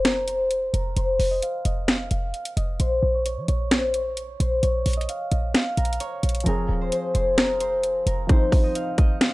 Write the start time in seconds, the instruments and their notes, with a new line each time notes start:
Already playing: 808-style bass F1, harp C5
0.05 harp A#4, finger snap, snare, closed hi-hat
0.28 harp C5, closed hi-hat
0.51 closed hi-hat
0.74 808-style bass F1, harp A#4, closed hi-hat
0.97 808-style bass F1, harp C5, closed hi-hat
1.19 808-style bass F1, open hi-hat
1.31 harp D#5
1.42 harp F5, closed hi-hat
1.65 808-style bass F1, harp D#5, closed hi-hat
1.88 harp F5, finger snap, snare, closed hi-hat
2.11 808-style bass F1, harp F5, closed hi-hat
2.34 closed hi-hat
2.45 closed hi-hat
2.57 808-style bass F1, harp D#5, closed hi-hat
2.80 808-style bass A#1, harp C5, closed hi-hat
3.03 808-style bass A#1
3.14 harp C#5
3.26 harp C#5, closed hi-hat
3.37 808-style bass F3
3.48 808-style bass A#1, harp C#5, closed hi-hat
3.71 harp C5, finger snap, snare, closed hi-hat
3.94 harp C#5, closed hi-hat
4.17 closed hi-hat
4.40 808-style bass A#1, harp C5, closed hi-hat
4.63 808-style bass A#1, harp C#5, closed hi-hat
4.86 808-style bass A#1, closed hi-hat, open hi-hat
4.93 harp D#5, closed hi-hat
5.01 closed hi-hat
5.09 harp F5, closed hi-hat
5.31 808-style bass A#1, harp D#5, closed hi-hat
5.54 harp F5, finger snap, snare, closed hi-hat
5.77 808-style bass A#1, harp A#4, closed hi-hat
5.85 closed hi-hat
5.93 closed hi-hat
6.00 harp C#5, closed hi-hat
6.23 808-style bass A#1, closed hi-hat
6.29 closed hi-hat
6.35 closed hi-hat
6.40 grand piano F3, closed hi-hat
6.46 808-style bass F1, grand piano C4 G#4, harp A#4, closed hi-hat
6.69 808-style bass D#1
6.81 harp C5
6.92 harp C5, closed hi-hat
7.14 808-style bass F1, harp C5, closed hi-hat
7.38 harp A#4, finger snap, snare, closed hi-hat
7.60 harp C5, closed hi-hat
7.83 closed hi-hat
8.06 808-style bass F1, harp A#4, closed hi-hat
8.27 grand piano F3 C4, harp C5, kick, closed hi-hat
8.32 grand piano D#4
8.52 kick, open hi-hat
8.64 harp D#5
8.75 harp F5, closed hi-hat
8.98 harp D#5, kick, closed hi-hat
9.21 harp F5, finger snap, snare, closed hi-hat